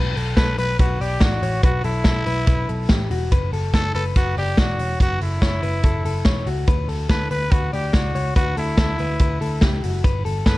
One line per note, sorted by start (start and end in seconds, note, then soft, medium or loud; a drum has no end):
0.00 0.13 B1 medium
0.00 0.17 B4 loud
0.16 0.34 B1 medium
0.16 0.36 A4 medium
0.16 open hi-hat medium
0.37 0.54 B1 medium
0.37 0.58 A4 medium
0.37 0.57 B4 loud
0.37 kick loud
0.37 snare loud
0.37 hi-hat pedal medium
0.37 ride medium
0.58 0.76 B1 medium
0.58 0.79 B4 medium
0.58 0.79 B4 loud
0.58 open hi-hat medium
0.79 0.97 B1 loud
0.79 1.03 F#4 medium
0.79 1.01 B4 medium
0.79 kick loud
0.79 hi-hat pedal medium
0.79 ride medium
1.00 1.18 B1 medium
1.00 1.24 G4 medium
1.00 1.41 D5 medium
1.00 open hi-hat medium
1.21 1.39 A1 medium
1.21 1.64 F#4 medium
1.21 kick loud
1.21 snare loud
1.21 hi-hat pedal medium
1.21 ride medium
1.42 1.60 A1 medium
1.42 1.63 C#5 medium
1.42 open hi-hat medium
1.63 1.81 B1 medium
1.63 1.84 F#4 loud
1.63 1.84 B4 loud
1.63 kick loud
1.63 hi-hat pedal medium
1.63 ride medium
1.84 2.02 B1 medium
1.84 3.07 E4 loud
1.84 2.04 A4 medium
1.84 open hi-hat medium
2.04 2.23 B1 medium
2.04 2.26 A4 medium
2.04 kick loud
2.04 snare loud
2.04 hi-hat pedal medium
2.04 ride medium
2.26 2.44 B1 medium
2.26 2.46 B4 medium
2.26 open hi-hat medium
2.47 2.65 B1 loud
2.47 2.69 B4 medium
2.47 kick loud
2.47 hi-hat pedal medium
2.47 ride medium
2.69 2.86 B1 medium
2.69 2.90 A4 medium
2.69 open hi-hat medium
2.89 3.07 A1 medium
2.89 3.10 G4 medium
2.89 kick loud
2.89 snare loud
2.89 hi-hat pedal medium
2.89 ride medium
3.11 3.28 E1 medium
3.11 3.32 F#4 medium
3.11 open hi-hat medium
3.32 3.49 F#1 loud
3.32 3.53 B4 loud
3.32 kick loud
3.32 hi-hat pedal medium
3.32 ride medium
3.53 3.70 F#1 medium
3.53 3.73 A4 medium
3.53 open hi-hat medium
3.74 3.91 F#1 medium
3.74 3.95 A4 medium
3.74 3.94 A4 loud
3.74 kick loud
3.74 snare loud
3.74 hi-hat pedal medium
3.74 ride medium
3.95 4.12 F#1 loud
3.95 4.04 A4 loud
3.95 4.16 B4 medium
3.95 open hi-hat medium
4.16 4.33 F#1 loud
4.16 4.36 F#4 medium
4.16 4.37 B4 medium
4.16 kick loud
4.16 hi-hat pedal medium
4.16 ride medium
4.37 4.54 F#1 medium
4.37 4.60 G4 loud
4.37 4.80 D5 medium
4.37 open hi-hat medium
4.57 4.75 E1 medium
4.57 5.00 F#4 medium
4.57 kick loud
4.57 snare loud
4.57 hi-hat pedal medium
4.57 ride medium
4.78 4.96 E1 medium
4.78 5.01 C#5 medium
4.78 open hi-hat medium
5.00 5.17 F#1 loud
5.00 5.20 F#4 medium
5.00 5.21 B4 loud
5.00 kick loud
5.00 hi-hat pedal medium
5.00 ride medium
5.21 5.38 F#1 medium
5.21 6.44 E4 medium
5.21 5.42 A4 medium
5.21 open hi-hat medium
5.42 5.59 F#1 medium
5.42 5.63 C#5 medium
5.42 kick loud
5.42 snare loud
5.42 hi-hat pedal medium
5.42 ride medium
5.63 5.80 F#1 medium
5.63 5.84 B4 medium
5.63 open hi-hat medium
5.83 6.01 F#1 loud
5.83 6.04 A4 medium
5.83 kick loud
5.83 hi-hat pedal medium
5.83 ride medium
6.05 6.22 F#1 medium
6.05 6.26 A4 medium
6.05 open hi-hat medium
6.25 6.43 E1 medium
6.25 6.47 C#5 medium
6.25 kick loud
6.25 snare loud
6.25 hi-hat pedal medium
6.25 ride medium
6.46 6.64 C#2 medium
6.46 6.68 F#4 medium
6.46 open hi-hat medium
6.67 6.85 D2 loud
6.67 6.89 B4 loud
6.67 kick loud
6.67 hi-hat pedal medium
6.67 ride medium
6.88 7.06 D2 medium
6.88 7.09 A4 medium
6.88 open hi-hat medium
7.10 7.27 D2 medium
7.10 7.31 A4 medium
7.10 7.30 B4 loud
7.10 kick loud
7.10 snare loud
7.10 ride medium
7.31 7.48 D2 medium
7.31 7.54 B4 loud
7.31 7.51 B4 medium
7.31 open hi-hat medium
7.52 7.69 D2 loud
7.52 7.73 F#4 medium
7.52 7.73 B4 medium
7.52 kick loud
7.52 hi-hat pedal medium
7.52 ride medium
7.73 7.91 D2 medium
7.73 7.96 G4 medium
7.73 8.13 D5 medium
7.73 open hi-hat medium
7.93 8.11 C#2 medium
7.93 8.36 F#4 medium
7.93 kick loud
7.93 snare loud
7.93 hi-hat pedal medium
7.93 ride medium
8.15 8.32 C#2 medium
8.15 8.36 C#5 medium
8.15 open hi-hat medium
8.36 8.53 D2 loud
8.36 8.56 F#4 loud
8.36 8.56 B4 loud
8.36 kick loud
8.36 hi-hat pedal medium
8.36 ride medium
8.57 8.74 D2 medium
8.57 9.80 E4 loud
8.57 8.77 A4 medium
8.57 open hi-hat medium
8.77 8.95 D2 medium
8.77 8.99 A4 medium
8.77 kick loud
8.77 snare loud
8.77 hi-hat pedal medium
8.77 ride medium
8.99 9.17 D2 medium
8.99 9.20 B4 medium
8.99 open hi-hat medium
9.19 9.37 D2 loud
9.19 9.41 B4 medium
9.19 kick loud
9.19 hi-hat pedal medium
9.19 ride medium
9.41 9.58 D2 medium
9.41 9.62 A4 medium
9.41 open hi-hat medium
9.61 9.79 C#2 medium
9.61 9.83 G4 medium
9.61 kick loud
9.61 snare loud
9.61 hi-hat pedal medium
9.61 ride medium
9.83 10.01 F#1 medium
9.83 10.04 F#4 medium
9.83 open hi-hat medium
10.04 10.22 G1 loud
10.04 10.25 B4 medium
10.04 kick loud
10.04 hi-hat pedal medium
10.04 ride medium
10.25 10.43 G1 medium
10.25 10.45 A4 medium
10.25 open hi-hat medium
10.46 10.58 G1 loud
10.46 10.58 A4 medium
10.46 10.58 B4 medium
10.46 kick loud
10.46 snare loud
10.46 hi-hat pedal medium
10.46 ride medium